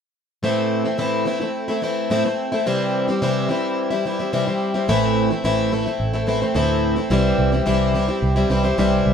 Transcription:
0.43 twelve-string acoustic guitar A2 E3 A3 C4 E4
0.84 twelve-string acoustic guitar A3 C4 E4
0.98 twelve-string acoustic guitar A2 E3 A3 C4 E4
1.25 twelve-string acoustic guitar E3 A3 C4 E4
1.40 twelve-string acoustic guitar A3 C4 E4
1.68 twelve-string acoustic guitar A3 C4 E4
1.82 twelve-string acoustic guitar E3 A3 C4 E4
2.10 twelve-string acoustic guitar A2 E3 A3 C4 E4
2.25 twelve-string acoustic guitar A3 C4 E4
2.52 twelve-string acoustic guitar A3 C4 E4
2.66 twelve-string acoustic guitar C3 E3 G3 C4 E4
3.08 twelve-string acoustic guitar G3 C4 E4
3.22 twelve-string acoustic guitar C3 E3 G3 C4 E4
3.49 twelve-string acoustic guitar E3 G3 C4 E4
3.91 twelve-string acoustic guitar G3 C4 E4
4.05 twelve-string acoustic guitar E3 G3 C4 E4
4.19 twelve-string acoustic guitar G3 C4 E4
4.33 twelve-string acoustic guitar C3 E3 G3 C4 E4
4.47 twelve-string acoustic guitar G3 C4 E4
4.74 twelve-string acoustic guitar G3 C4 E4
4.88 fingered electric bass A1, twelve-string acoustic guitar A2 E3 A3 C4 E4
5.31 twelve-string acoustic guitar A3 C4 E4
5.44 fingered electric bass A1, twelve-string acoustic guitar A2 E3 A3 C4 E4
5.72 twelve-string acoustic guitar E3 A3 C4 E4
5.86 twelve-string acoustic guitar A3 C4 E4
6.00 fingered electric bass A1
6.13 twelve-string acoustic guitar A3 C4 E4
6.27 twelve-string acoustic guitar E3 A3 C4 E4
6.41 twelve-string acoustic guitar A3 C4 E4
6.54 fingered electric bass D2, twelve-string acoustic guitar A2 E3 A3 C4 E4
6.96 twelve-string acoustic guitar A3 C4 E4
7.10 fingered electric bass C2, twelve-string acoustic guitar C3 E3 G3 C4 E4
7.38 fingered electric bass C2
7.52 twelve-string acoustic guitar G3 C4 E4
7.66 fingered electric bass C2, twelve-string acoustic guitar C3 E3 G3 C4 E4
7.94 twelve-string acoustic guitar E3 G3 C4 E4
8.08 twelve-string acoustic guitar G3 C4 E4
8.22 fingered electric bass C2
8.36 twelve-string acoustic guitar G3 C4 E4
8.50 fingered electric bass C2, twelve-string acoustic guitar E3 G3 C4 E4
8.64 twelve-string acoustic guitar G3 C4 E4
8.78 fingered electric bass C2, twelve-string acoustic guitar C3 E3 G3 C4 E4
9.06 fingered electric bass C2

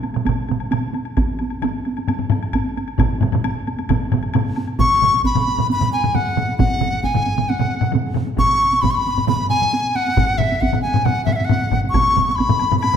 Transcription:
0.03 taiko high, high woodblock
0.14 taiko mid, taiko high, high woodblock
0.26 taiko, taiko mid, taiko high, high woodblock
0.37 taiko high
0.49 taiko mid, taiko high, high woodblock
0.59 taiko high, high woodblock
0.71 taiko mid, taiko high, high woodblock
0.83 taiko high
0.94 taiko high, high woodblock
1.05 taiko high, high woodblock
1.17 taiko, taiko high, high woodblock
1.29 taiko high
1.39 taiko high, high woodblock
1.50 taiko high, high woodblock
1.62 taiko low-mid, taiko high, high woodblock
1.75 taiko high
1.85 taiko high, high woodblock
1.97 taiko high, high woodblock
2.08 taiko low-mid, taiko high, high woodblock
2.19 taiko low-mid, taiko high
2.30 taiko low-mid, taiko high, high woodblock
2.43 taiko high, high woodblock
2.53 taiko, taiko high, high woodblock
2.67 taiko high
2.77 taiko high, high woodblock
2.88 taiko high, high woodblock
2.98 taiko, taiko low-mid, taiko mid, taiko high, high woodblock
3.10 taiko high
3.21 taiko low-mid, taiko mid, taiko high, high woodblock
3.32 taiko low-mid, taiko mid, taiko high, high woodblock
3.44 taiko high, high woodblock
3.56 taiko high
3.67 taiko high, high woodblock
3.79 taiko high, high woodblock
3.89 taiko, taiko low-mid, taiko mid, taiko high, high woodblock
4.01 taiko high
4.12 taiko low-mid, taiko mid, taiko high, high woodblock
4.23 taiko high, high woodblock
4.34 taiko low-mid, taiko mid, taiko high, high woodblock
4.46 taiko high
4.56 taiko high, high woodblock
4.68 high woodblock
4.79 dizi C#6, taiko, taiko low-mid, taiko mid, taiko high
5.02 taiko low-mid, taiko mid
5.13 taiko high
5.24 dizi B5, taiko, taiko high
5.35 taiko low-mid, taiko mid
5.47 taiko high
5.58 taiko low-mid, taiko mid, taiko high
5.70 dizi B5, taiko high
5.81 taiko low-mid, taiko mid
5.93 dizi G#5, taiko high
6.04 taiko low-mid, taiko mid
6.15 dizi F#5, taiko low-mid, taiko mid, taiko high
6.37 taiko low-mid, taiko mid, taiko high
6.48 taiko high
6.58 dizi F#5, taiko, taiko low-mid, taiko mid, taiko high
6.81 taiko low-mid, taiko mid, taiko high
6.93 taiko high
7.03 dizi G#5, taiko, taiko high
7.15 taiko low-mid, taiko mid
7.26 taiko high
7.38 taiko low-mid, taiko mid, taiko high
7.49 dizi F#5, taiko high
7.59 taiko low-mid, taiko mid
7.71 taiko high
7.81 taiko low-mid, taiko mid
7.92 taiko low-mid, taiko mid, taiko high
8.14 taiko low-mid, taiko mid, taiko high
8.27 taiko high
8.37 dizi C#6, taiko, taiko low-mid, taiko mid, taiko high
8.73 taiko high
8.82 dizi B5, taiko, taiko low-mid, taiko mid, taiko high
8.91 dizi C#6
8.95 dizi B5
9.07 taiko high
9.18 taiko low-mid, taiko mid, taiko high
9.28 dizi B5, taiko low-mid, taiko mid, taiko high
9.50 dizi G#5, taiko low-mid, taiko mid, taiko high
9.62 taiko low-mid, taiko mid
9.73 taiko high
9.95 dizi F#5, taiko high
10.07 taiko high
10.17 taiko, taiko low-mid, taiko mid, taiko high
10.38 dizi E5, taiko low-mid, taiko mid, taiko high
10.52 taiko high
10.61 dizi F#5, taiko, taiko high
10.73 taiko low-mid, taiko mid
10.82 dizi G#5, taiko high
10.94 taiko low-mid, taiko mid, taiko high
11.05 dizi F#5, taiko low-mid, taiko mid, taiko high
11.25 dizi E5, taiko low-mid, taiko mid
11.30 dizi F#5, taiko high
11.35 dizi E5
11.40 taiko high
11.45 dizi F#5
11.49 taiko low-mid, taiko mid, taiko high
11.71 taiko, taiko low-mid, taiko mid, taiko high
11.85 taiko high
11.89 dizi C#6
11.94 taiko, taiko low-mid, taiko mid, taiko high, high woodblock
12.17 taiko low-mid, taiko mid, taiko high
12.29 dizi C#6, taiko high
12.36 dizi B5, taiko, high woodblock
12.40 taiko high
12.49 taiko low-mid, taiko mid
12.59 taiko high, high woodblock
12.72 taiko low-mid, taiko mid, taiko high
12.79 dizi B5, high woodblock
12.84 taiko high
12.94 taiko mid

